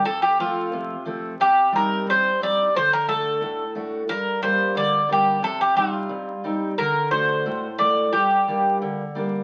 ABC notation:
X:1
M:2/4
L:1/16
Q:1/4=89
K:Gm
V:1 name="Bouzouki"
A G F4 z2 | G2 B2 c2 d2 | c B A4 z2 | B2 c2 d2 G2 |
A G F4 z2 | B2 c4 d2 | G4 z4 |]
V:2 name="Steel-string acoustic guitar"
F,,2 [F,A,C]2 C,2 [F,A,C]2 | C,2 [G,CE]2 G,,2 [G,CE]2 | D,2 [A,D^F]2 A,,2 [A,DF]2 | G,,2 [G,B,D]2 D,2 [G,B,D]2 |
C,2 [G,CE]2 G,,2 [G,CE]2 | D,2 [A,D^F]2 A,,2 [A,DF]2 | G,,2 [G,B,D]2 D,2 [G,B,D]2 |]